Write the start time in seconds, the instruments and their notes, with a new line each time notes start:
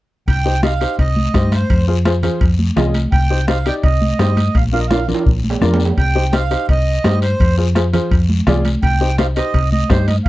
0.28 fingered electric bass C2, accordion G5, bombo low, high timbale, long guiro
0.45 upright piano D#4 G4 C5, high conga
0.63 upright piano D#4 G4 D#5, accordion F5, bombo rim, high conga, high timbale, short guiro
0.81 upright piano D#4 G4 C5, high timbale, short guiro
0.99 fingered electric bass C2, accordion D#5, bombo low, high conga, high timbale, long guiro
1.16 high conga
1.34 fingered electric bass G2, upright piano D#4 G4 C5, bombo low, bombo rim, high conga, high timbale, short guiro
1.52 accordion C5, bombo rim, high conga, high timbale, short guiro
1.70 fingered electric bass F2, bombo low, high timbale, long guiro
1.88 upright piano F4 G#4 C5, high conga
2.05 upright piano F4 G#4 C5, bombo rim, high conga, high timbale, short guiro
2.23 upright piano F4 G#4 C5, low conga, high timbale, short guiro
2.41 fingered electric bass F2, bombo low, high timbale, long guiro
2.59 high conga
2.76 fingered electric bass C2, upright piano F4 G#4 D#5, bombo rim, high conga, low conga, high timbale, low timbale, short guiro
2.94 high conga, high timbale, short guiro
3.12 fingered electric bass C2, accordion G5, bombo low, high timbale, long guiro
3.30 upright piano D#4 G4 C5, high conga
3.48 upright piano D#4 G4 C5, accordion F5, bombo rim, high conga, high timbale, short guiro
3.66 upright piano D#4 G4 D5, accordion G5, high timbale, short guiro
3.83 fingered electric bass C2, accordion D#5, bombo low, high conga, high timbale, long guiro
4.02 high conga
4.19 fingered electric bass G2, upright piano D#4 G4 C5, bombo rim, high conga, high timbale, low timbale, short guiro
4.37 high conga, high timbale, short guiro
4.55 fingered electric bass A#1, accordion F5, bombo low, high timbale, long guiro
4.73 upright piano D4 F4 A#4, accordion F5, high conga
4.80 accordion D#5
4.87 upright piano D4 F4, accordion F5, bombo rim, high conga, high timbale, short guiro
4.92 upright piano A#4
5.08 upright piano D4 F4 A#4, low conga, short guiro
5.14 high timbale
5.26 fingered electric bass A#1, bombo low, high conga, long guiro
5.44 high conga
5.50 low timbale
5.61 fingered electric bass F2, upright piano D4 F4 A#4, bombo rim, high conga, low conga, low timbale, short guiro
5.74 low timbale
5.80 short guiro
5.85 low timbale
5.97 fingered electric bass C2, accordion G5, bombo low, high timbale, long guiro
6.15 upright piano D#4 G4 C5, high conga
6.32 upright piano D#4 G4 C5, accordion F5, bombo rim, high conga, high timbale, short guiro
6.50 upright piano D#4 G4 C5, high timbale, short guiro
6.69 fingered electric bass C2, accordion D#5, bombo low, high conga, high timbale, long guiro
7.04 fingered electric bass G2, upright piano D#4 G4 C5, bombo rim, high conga, high timbale, low timbale, short guiro
7.22 accordion C5, high timbale, short guiro
7.40 fingered electric bass F2, bombo low, high timbale, long guiro
7.58 upright piano F4 G#4 C5, high conga
7.75 upright piano F4 G#4 C5, bombo rim, high conga, high timbale, short guiro
7.93 upright piano F4 G#4 C5, low conga, high timbale, short guiro
8.11 fingered electric bass F2, bombo low, high conga, high timbale, long guiro
8.29 high conga
8.47 fingered electric bass C2, upright piano F4 G#4 D5, bombo low, bombo rim, high conga, low conga, high timbale, low timbale, short guiro
8.65 high conga, high timbale, short guiro
8.83 fingered electric bass C2, accordion G5, bombo low, high timbale, long guiro
9.01 upright piano D#4 G4 C5, high conga
9.18 upright piano D#4 G4 C5, accordion F5, bombo rim, high conga, high timbale, short guiro
9.36 upright piano D#4 G4 C5, accordion D#5, high timbale, short guiro
9.54 fingered electric bass C2, bombo low, high conga, high timbale, long guiro
9.72 accordion D#5, high conga
9.90 fingered electric bass G2, upright piano D#4 G4 C5, accordion C5, bombo low, bombo rim, high conga, high timbale, low timbale, short guiro
10.08 accordion D#5, high conga, high timbale, short guiro
10.25 fingered electric bass A#1, accordion F5, bombo low